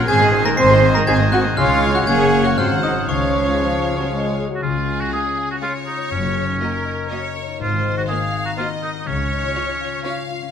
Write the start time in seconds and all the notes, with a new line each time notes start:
0.07 G#1 G#2 D#3 C4 G#4 C5 G#5 G#6
0.20 D#3 G#3 G#4 D#5
0.32 C4 C5 G#5
0.44 G#3 D#4 G#4 A#4 D#5 A#5 A#6
0.57 G#1 C4 D#4 G#4 C5 G#5 C6 C7
0.69 G#3 G#4 C5 D#5
0.82 C4 C5 D#5 G#5
0.94 G#3 G#4 A#4 D#5 G#5 A#5 A#6
1.06 G#1 C4 D#4 G#4 C5 D#5 G#5 G#6
1.19 G#3 G#4 C5 D#5
1.31 C4 F#4 G#4 C5 F#5 G#5 F#6
1.44 G#3 D#4 G#4 D#5
1.57 C#2 C#3 G#3 C#4 F4 C#5 F5 F6
1.70 G#3
1.82 C#4
1.95 F4 F#4 F#5 F#6
2.07 F#1 F#2 A#3 C#4 G#4 C#5 F#5 G#5 G#6
2.21 C#3
2.33 C#4
2.45 F#4 F#5 F#6
2.57 G#1 G#2 F#3 G#3 C4 F4 C5 F5 F#5 F6
2.71 D#3
2.83 C4 D#4 D#5 D#6
2.97 F#4
3.08 C#2 C#3 F3 G#3 C#4 C#5 F5 C#6
3.22 G#3
3.35 C#4
3.48 F4
3.60 F3 G#4
3.73 C#5
3.85 F5
3.98 F#3 G#5
4.11 G#3 F5
4.25 C#5
4.38 G#4
4.50 F#3 F4
4.55 F#4
4.62 C#2 C#3 F4 G#4
4.76 G#3
4.88 C#4
5.01 F4 F#4
5.11 G#3 G#4 F5
5.25 C#5
5.38 F5
5.50 F#4 G#5
5.61 G#3 F4 G#4 C#5 F5
5.74 C#5
5.86 D#4 G#4
5.98 F4
6.11 F#1 F#2 C#4
6.23 C#3
6.36 C#4
6.48 D#4
6.61 A#3 F#4 A#4 D#5
6.73 C#5
6.85 D#5
6.98 A#5
7.11 A#3 F#4 C#5 D#5
7.23 C#5
7.35 A#4
7.47 D#4
7.60 G#1 G#2 F4 C5
7.72 D#3
7.85 C4
7.97 F#4
8.08 A#3 F#4 G#4 A#4 C5 F5
8.21 C5
8.33 F#5
8.45 F#4 A#5
8.57 A#3 F4 F#4 C5 D#5 F#5
8.70 C5
8.81 D#4 A#4
8.94 F#4
9.00 D#4
9.06 C#2 C#3 C#4 C#5
9.19 G#3
9.31 C#4
9.43 F4
9.55 C#4 F4 C#5
9.68 F4
9.81 F5
9.93 C#6
10.04 C#4 F4 C#5 F5
10.17 C#5
10.30 F4
10.42 C#4